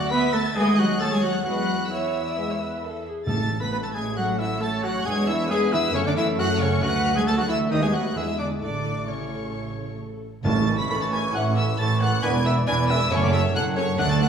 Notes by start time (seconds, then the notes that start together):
Already playing: D2 F#4 D5 F#5 F#6
0.11 B3 B4 E5 B5 B6
0.33 A3 A4 A5 A6
0.55 D#2 G#3 A3 B3 G#4 D#5 G#5 G#6
0.78 F#3 F#4 F#5 F#6
1.00 A3 A4 C#5 A5 A6
1.11 G#3 G#4 G#5 G#6
1.22 F#3 F#4 F#5 F#6
1.45 E2 F#3 G#3 B3 F#4 B4 F#5 F#6
1.90 E3 E4 C#5 E5 E6
2.27 D5
2.36 G#3 B3 E5
2.49 C#5
2.59 B4
2.82 A4
3.04 G#4
3.27 A1 A2 A3 C#4 A4 A5 A6
3.60 B3 B4 B5 B6
3.71 B3 B4 B5 B6
3.83 A3 A4 A5 A6
3.94 G#3 G#4 G#5 G#6
4.16 F#3 F#4 A4 F#5 F#6
4.39 E3 E4 E5 E6
4.61 A3 A4 C#5 A5 A6
4.83 F#3 F#4 F#5 F#6
5.05 E2 G#3 B3 D4 G#4 G#5 G#6
5.27 E3 E4 E5 E6
5.50 G#3 G#4 B4 G#5 G#6
5.72 E3 E4 E5 E6
5.94 F#2 C#3 A3 C#4 A4 C#5 C#6
6.05 D3 D4 D5 D6
6.16 E3 E4 E5 E6
6.38 F#3 F#4 F#5 F#6
6.60 C#3 C#4 C#5 C#6
6.82 D2 F#3 D4 F#4 B4 F#5 F#6
7.15 G#3 G#4 G#5 G#6
7.26 A3 A4 A5 A6
7.37 F#3 F#4 F#5 F#6
7.48 E3 E4 E5 E6
7.70 D#2 D#3 B3 D#4 B4 D#5 D#6
7.81 G#3 G#4 G#5 G#6
7.92 F#3 F#4 F#5 F#6
8.15 E2 E3 G#3 D4 E4 G#4 E5 E6
8.38 D3 D4 D5 D6
8.61 A1 D3 A3 D4 E4 A4 D5 D6
9.08 C#3 C#4 C#5 C#6
10.44 A1 A2 E3 C#4 E4 A4 C#5 A5 C#6 A6
10.67 C#4 A4
10.79 B5 B6
10.89 A1 A2 C#4 A4 B5 B6
11.01 A5 A6
11.11 C#4 A4 G#5 G#6
11.33 A1 A2 C#4 E4 A4 F#5 F#6
11.56 C#4 A4 E5 E6
11.78 A1 A2 E3 C#4 A4 C#5 A5 C#6 A6
12.00 C#4 A4 F#5 F#6
12.22 E1 E2 E3 B3 D4 B4 D5 G#5 B5 G#6
12.45 D4 B4 E5 E6
12.66 E1 E2 E3 D4 B4 D5 G#5 B5 G#6
12.88 D4 B4 E5 E6
13.10 F#1 F#2 F#3 A3 C#4 A4 C#5 A5 C#6
13.21 D5 D6
13.32 C#4 A4 E5 E6
13.54 F#1 F#2 F#3 C#4 A4 C#5 F#5 A5 F#6
13.76 C#4 A4 C#5 C#6
13.98 D2 A3 D4 A4 D5 F#5 A5 F#6
14.10 A5 A6
14.20 D4 A4 F#5 F#6